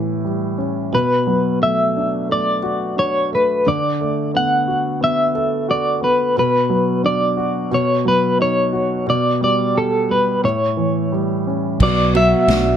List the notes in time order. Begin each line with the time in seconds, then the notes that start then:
Already playing: A2 E3 G4
0.24 G3
0.58 C#4
0.92 B2 B4
1.27 F#3
1.62 A3 E5
1.97 D4
2.29 A3 D5
2.63 F#4
2.97 D4 C#5
3.32 A3 B4
3.66 D3 D5
4.01 A3
4.34 B3 F#5
4.68 F#4
5.01 B3 E5
5.35 A4
5.68 F#4 D5
6.01 B3 B4
6.37 B2 B4
6.69 F#3
7.04 D4 D5
7.37 F#4
7.71 B2 C#5
8.05 F#3 B4
8.39 D#4 C#5
8.73 F#4
9.07 B2 D5
9.41 G3 D5
9.75 G4 A4
10.09 G3 B4
10.43 A2 C#5
10.77 E3
11.12 G3
11.47 C#4
11.80 B1 B2 D5, kick, crash
12.15 F#3 F#4 E5, ride
12.48 B1 D4, snare, ride